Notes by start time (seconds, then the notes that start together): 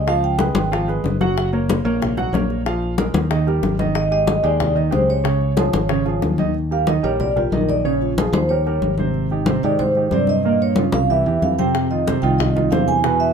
Already playing: C#2
0.07 F3 F4 F5, high bongo, high conga
0.23 G5, high conga
0.39 G#3 G#4 B4, high bongo, high conga
0.55 G#1, high bongo, high conga
0.71 F3 F4 F5, high bongo, high conga
0.88 G#3 G#4 B4, high bongo, high conga
1.04 F#1, high bongo, low bongo, high conga
1.21 F#3 F#4 F#5, high bongo, high conga
1.37 high bongo, high conga
1.53 A#3 A#4 C#5, high conga
1.69 high bongo, high conga
1.85 A#1 A#3 A#4 C#5, high bongo
2.02 high bongo, high conga, low conga
2.17 F#3 F#4 F#5, high bongo, high conga, low conga
2.33 A#1 A#3 A#4 C#5, high bongo, low bongo, high conga
2.50 high bongo
2.66 F3 F4 F5, high bongo, high conga
2.82 high conga
2.98 G#3 G#4 A#4, high bongo, high conga
3.14 D#2, high bongo, high conga
3.31 D#3 D#4 D#5, high bongo, high conga
3.47 G3 G4 A#4, high bongo, high conga
3.63 G#1, high bongo, low bongo, high conga
3.79 D#3 D#4 D#5, high bongo, high conga
3.95 D#5, high bongo, high conga
4.11 G#3 G4 G#4 D#5, high conga
4.27 high bongo, high conga
4.43 D#2 G#3 G4 G#4 D5, high bongo, high conga
4.60 high bongo, high conga, low conga
4.75 D#3 D#4 D#5, high bongo, high conga
4.91 C#2 G#3 G4 G#4 C5, high bongo, low bongo, high conga
5.09 C#5, high bongo
5.24 C#3 C#4 C#5, high bongo, high conga
5.41 high conga
5.57 F3 F4 G#4, high bongo, high conga
5.73 G#1, high bongo, high conga
5.89 C#3 C#4 C#5, high bongo
6.06 F3 F4 G#4, high bongo, high conga
6.22 D#2, high bongo, low bongo, high conga
6.38 D#3 D#4 D#5, high bongo, high conga
6.54 high conga
6.71 G3 G4 A#4 F5, high conga
6.87 D#3 D#4 D#5, high conga
7.03 A#1 G3 G4 A#4 C#5, high conga
7.20 D5, high conga, low conga
7.36 G3 F4 G4 A#4, high conga, low conga
7.52 A#1 D#3 D#4 A#4 D#5, high conga
7.69 D5, high conga
7.85 C#3 C#4 C#5, high conga
8.01 F4, high conga
8.18 F3 F4 G#4, high conga
8.33 D#2 C5, high conga
8.49 G3 G4 A#4 C#5, high conga
8.66 G3 G4 A#4, high conga
8.82 G#1, high conga
8.98 C3 C4 C5, high conga
9.14 high conga
9.30 D#3 D#4 G4, high conga
9.46 C3 C4 C5, high conga
9.63 G#2 D#3 D#4 G4 D5, high conga
9.79 C5, high conga, low conga
9.95 D#3 D#4 G4, high conga
10.11 G2 C3 C4 C5 D5, high conga
10.27 D#5, high conga
10.44 A#2 A#3 A#4, high conga
10.60 C#5, high conga
10.76 C#3 C#4 F4, high conga
10.92 C2 F5, high conga
11.09 E3 E4 G4 E5, high conga
11.26 E2 E3 E4 G4, high conga
11.42 F2 F5, high conga
11.59 C3 C4 C5 G5, high conga
11.75 high bongo, high conga
11.91 D#3 D#4 F4 D#5, high conga
12.07 C3 C4 C5, high bongo, high conga
12.22 C2 D#3 D#4 F4 G5, high bongo, high conga
12.39 D#5, high bongo, high conga, low conga
12.56 D#3 D#4 F4, high bongo, high conga, low conga
12.71 E2 C3 C4 C5 F5, high bongo, low bongo, high conga
12.88 G#5, high bongo, high conga
13.04 B2 B3 B4, high bongo
13.20 E5, high conga